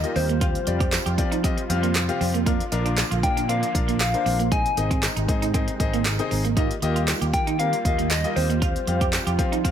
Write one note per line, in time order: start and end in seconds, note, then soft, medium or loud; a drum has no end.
0.00 0.39 D#3 medium
0.00 2.42 G3 medium
0.00 0.39 A#3 medium
0.00 0.26 A#3 medium
0.00 4.48 F4 medium
0.00 0.26 F4 medium
0.00 0.26 G4 medium
0.00 0.18 D#5 loud
0.00 0.26 D#5 medium
0.00 closed hi-hat medium
0.16 0.54 D#2 loud
0.16 0.25 C4 medium
0.16 2.21 C5 loud
0.16 open hi-hat medium
0.29 0.37 A#3 medium
0.29 closed hi-hat soft
0.41 2.44 C3 medium
0.41 4.48 F3 medium
0.41 0.57 C4 medium
0.41 0.57 F4 medium
0.41 0.50 F4 loud
0.41 0.57 G4 medium
0.41 0.57 F5 medium
0.41 kick loud
0.41 closed hi-hat loud
0.55 closed hi-hat medium
0.67 0.96 F2 medium
0.67 0.98 C4 medium
0.67 0.98 F4 medium
0.67 0.98 G4 medium
0.67 0.98 D5 medium
0.67 muted clean electric guitar stroke soft
0.67 closed hi-hat medium
0.80 0.88 G4 medium
0.80 kick loud
0.80 closed hi-hat medium
0.92 snare medium
0.92 clap loud
0.92 closed hi-hat medium
0.92 tambourine medium
1.06 1.20 F2 medium
1.06 1.14 G4 medium
1.06 closed hi-hat medium
1.18 1.57 F3 loud
1.18 1.34 C4 medium
1.18 1.34 F4 medium
1.18 1.34 G4 medium
1.18 1.34 D5 loud
1.18 muted clean electric guitar stroke soft
1.18 kick medium
1.18 closed hi-hat medium
1.32 1.40 D#4 medium
1.32 closed hi-hat medium
1.44 1.60 C4 medium
1.44 1.53 C4 medium
1.44 1.60 F4 medium
1.44 1.60 G4 medium
1.44 1.60 D#5 loud
1.44 kick loud
1.44 closed hi-hat medium
1.57 muted clean electric guitar stroke soft
1.57 closed hi-hat medium
1.69 2.08 F2 medium
1.69 1.93 C4 loud
1.69 1.93 F4 medium
1.69 1.93 G4 medium
1.69 1.93 F5 loud
1.69 closed hi-hat loud
1.83 1.91 A#3 medium
1.83 closed hi-hat medium
1.95 muted clean electric guitar stroke soft
1.95 snare medium
1.95 clap loud
1.95 closed hi-hat medium
1.95 tambourine medium
2.09 2.31 C4 medium
2.09 2.31 F4 medium
2.09 2.32 G4 medium
2.09 2.32 F5 loud
2.09 closed hi-hat medium
2.21 2.59 F2 loud
2.21 2.30 C4 medium
2.21 open hi-hat medium
2.34 2.42 A#3 medium
2.34 closed hi-hat soft
2.46 4.50 D3 medium
2.46 4.49 A#3 medium
2.46 2.55 A#3 loud
2.46 2.62 D4 medium
2.46 2.62 F4 medium
2.46 2.62 A#4 medium
2.46 2.62 F5 loud
2.46 kick loud
2.46 closed hi-hat medium
2.60 closed hi-hat medium
2.72 3.02 A#1 medium
2.72 3.03 D4 loud
2.72 3.03 F4 medium
2.72 3.03 A#4 medium
2.72 3.03 F5 loud
2.72 muted clean electric guitar stroke soft
2.72 closed hi-hat medium
2.86 2.94 D4 medium
2.86 closed hi-hat medium
2.98 snare medium
2.98 clap loud
2.98 closed hi-hat medium
2.98 tambourine medium
3.11 3.25 A#1 medium
3.11 3.19 F4 medium
3.11 closed hi-hat medium
3.23 3.62 A#2 loud
3.23 3.39 D4 medium
3.23 3.39 F4 medium
3.23 3.39 A#4 medium
3.23 3.40 F5 medium
3.23 3.50 G5 loud
3.23 muted clean electric guitar stroke soft
3.23 kick loud
3.23 closed hi-hat medium
3.37 3.45 D4 medium
3.37 closed hi-hat medium
3.49 3.58 C4 medium
3.49 3.65 D4 medium
3.49 3.65 F4 medium
3.49 3.65 A#4 medium
3.49 4.00 F5 loud
3.49 3.65 F5 medium
3.49 closed hi-hat medium
3.63 muted clean electric guitar stroke soft
3.63 closed hi-hat medium
3.74 4.13 A#1 medium
3.74 3.98 D4 medium
3.74 3.98 F4 medium
3.74 3.98 A#4 medium
3.74 3.98 F5 medium
3.74 kick loud
3.74 closed hi-hat medium
3.88 3.96 A#3 medium
3.88 closed hi-hat medium
4.00 4.53 F5 loud
4.00 snare medium
4.00 clap loud
4.00 closed hi-hat loud
4.00 tambourine medium
4.14 4.37 D4 medium
4.14 4.37 F4 medium
4.14 4.37 A#4 medium
4.14 4.37 C5 medium
4.14 closed hi-hat medium
4.26 4.64 A#1 loud
4.26 4.35 C4 medium
4.26 open hi-hat medium
4.39 4.48 A#3 medium
4.39 closed hi-hat soft
4.51 6.55 C3 medium
4.51 8.58 D#3 medium
4.51 6.55 G#3 medium
4.51 4.61 G#3 loud
4.51 4.67 C4 medium
4.51 6.55 D#4 medium
4.51 4.68 D#4 medium
4.51 4.68 G#4 medium
4.51 4.68 D#5 medium
4.51 5.03 G#5 loud
4.51 kick loud
4.51 closed hi-hat loud
4.66 closed hi-hat medium
4.77 5.07 G#1 medium
4.77 5.08 C4 medium
4.77 5.08 D#4 medium
4.77 5.08 G#4 medium
4.77 5.08 D#5 medium
4.77 muted clean electric guitar stroke soft
4.77 closed hi-hat medium
4.91 4.99 C4 medium
4.91 kick medium
4.91 closed hi-hat medium
5.03 snare medium
5.03 clap loud
5.03 closed hi-hat medium
5.03 tambourine medium
5.16 5.30 G#1 loud
5.16 5.25 D#4 medium
5.16 closed hi-hat medium
5.28 5.67 G#2 loud
5.28 5.44 C4 medium
5.28 5.44 D#4 medium
5.28 5.44 G#4 medium
5.28 5.45 D#5 loud
5.28 muted clean electric guitar stroke soft
5.28 kick loud
5.28 closed hi-hat medium
5.42 5.50 D#4 medium
5.42 closed hi-hat medium
5.54 5.70 C4 medium
5.54 5.63 C4 medium
5.54 5.70 D#4 medium
5.54 5.70 G#4 medium
5.54 5.70 D#5 loud
5.54 kick loud
5.54 closed hi-hat medium
5.68 muted clean electric guitar stroke soft
5.68 closed hi-hat medium
5.80 6.18 G#1 medium
5.80 6.03 C4 loud
5.80 6.03 D#4 medium
5.80 6.03 G#4 medium
5.80 6.03 D#5 loud
5.80 kick loud
5.80 closed hi-hat loud
5.93 6.01 A#3 medium
5.93 closed hi-hat medium
6.05 muted clean electric guitar stroke soft
6.05 snare medium
6.05 clap loud
6.05 closed hi-hat loud
6.05 tambourine medium
6.19 6.42 C4 medium
6.19 6.42 D#4 medium
6.19 6.42 G#4 medium
6.19 6.42 D#5 loud
6.19 closed hi-hat medium
6.31 6.70 G#1 loud
6.31 6.40 C4 medium
6.31 open hi-hat medium
6.45 6.53 A#3 medium
6.45 closed hi-hat soft
6.57 9.71 G3 medium
6.57 6.73 A#3 loud
6.57 8.60 A#3 medium
6.57 6.66 D#4 loud
6.57 9.71 F4 medium
6.57 6.73 F4 medium
6.57 6.73 G4 medium
6.57 6.73 D#5 loud
6.57 kick loud
6.57 closed hi-hat loud
6.71 closed hi-hat medium
6.82 7.12 D#2 medium
6.82 7.13 A#3 loud
6.82 7.13 F4 medium
6.82 7.13 G4 medium
6.82 7.13 D#5 loud
6.82 muted clean electric guitar stroke soft
6.82 closed hi-hat medium
6.96 7.04 F4 medium
6.96 closed hi-hat medium
7.08 snare medium
7.08 clap loud
7.08 closed hi-hat medium
7.08 tambourine medium
7.21 7.35 D#2 medium
7.21 7.30 G4 medium
7.21 closed hi-hat medium
7.33 7.72 D#3 loud
7.33 7.49 A#3 medium
7.33 7.50 F4 medium
7.33 7.50 G4 medium
7.33 7.50 F5 medium
7.33 7.61 G5 loud
7.33 muted clean electric guitar stroke soft
7.33 kick loud
7.33 closed hi-hat medium
7.47 7.55 D#4 medium
7.47 closed hi-hat medium
7.59 7.75 A#3 medium
7.59 7.68 C4 medium
7.59 7.75 F4 medium
7.59 7.75 G4 medium
7.59 7.75 A#4 medium
7.59 7.84 F5 loud
7.59 closed hi-hat medium
7.73 muted clean electric guitar stroke soft
7.73 closed hi-hat medium
7.85 8.24 D#2 medium
7.85 8.08 A#3 medium
7.85 8.08 F4 medium
7.85 8.08 G4 medium
7.85 8.08 D#5 medium
7.85 8.12 F5 loud
7.85 kick loud
7.85 closed hi-hat medium
7.98 8.06 A#3 medium
7.98 closed hi-hat medium
8.10 8.36 D#5 loud
8.10 muted clean electric guitar stroke soft
8.10 snare medium
8.10 clap loud
8.10 closed hi-hat loud
8.10 tambourine medium
8.24 8.47 A#3 medium
8.24 8.47 F4 medium
8.24 8.47 G4 medium
8.24 8.47 D#5 medium
8.24 closed hi-hat medium
8.36 8.75 D#2 loud
8.36 8.45 C4 medium
8.36 9.71 C5 loud
8.36 open hi-hat medium
8.50 8.58 A#3 medium
8.50 closed hi-hat soft
8.62 9.71 C3 medium
8.62 9.71 F3 medium
8.62 8.78 C4 medium
8.62 8.71 F4 loud
8.62 8.78 F4 medium
8.62 8.78 G4 medium
8.62 8.78 F5 medium
8.62 kick loud
8.62 closed hi-hat loud
8.76 closed hi-hat medium
8.87 9.17 F2 medium
8.87 9.18 C4 medium
8.87 9.18 F4 medium
8.87 9.18 G4 medium
8.87 9.18 F5 medium
8.87 muted clean electric guitar stroke soft
8.87 closed hi-hat medium
9.01 9.09 G4 medium
9.01 kick medium
9.01 closed hi-hat medium
9.13 snare medium
9.13 clap loud
9.13 closed hi-hat medium
9.13 tambourine medium
9.27 9.40 F2 medium
9.27 9.35 G4 medium
9.27 closed hi-hat medium
9.39 9.71 F3 loud
9.39 9.55 C4 medium
9.39 9.55 F4 medium
9.39 9.55 G4 medium
9.39 9.55 F5 loud
9.39 muted clean electric guitar stroke soft
9.39 kick loud
9.39 closed hi-hat medium
9.52 9.60 D#4 medium
9.52 closed hi-hat medium
9.64 9.71 C4 medium
9.64 9.71 F4 medium
9.64 9.71 G4 medium
9.64 9.71 F5 loud
9.64 kick loud
9.64 closed hi-hat medium